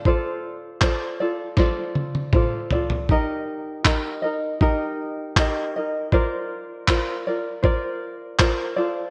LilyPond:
<<
  \new Staff \with { instrumentName = "Ukulele" } { \time 4/4 \key bes \major \tempo 4 = 79 <f' a' c'' d''>4 <f' a' c'' d''>8 <f' a' d''>8 <f' a' c'' d''>4 <f' a' c'' d''>8 <f' a' d''>8 | <ees' g' bes' ees''>4 <ees' g' bes' ees''>8 <ees' bes' ees''>8 <ees' g' bes' ees''>4 <ees' g' bes' ees''>8 <ees' bes' ees''>8 | <f' bes' c'' d''>4 <f' bes' c'' d''>8 <f' bes' d''>8 <f' bes' c'' d''>4 <f' bes' c'' d''>8 <f' a' c'' d''>8 | }
  \new DrumStaff \with { instrumentName = "Drums" } \drummode { \time 4/4 bd4 <hc bd>4 <bd sn>8 tommh16 tommh16 <bd toml>8 tomfh16 tomfh16 | bd4 <hc bd>4 bd4 <hc bd>4 | bd4 <hc bd>4 bd4 <hc bd>4 | }
>>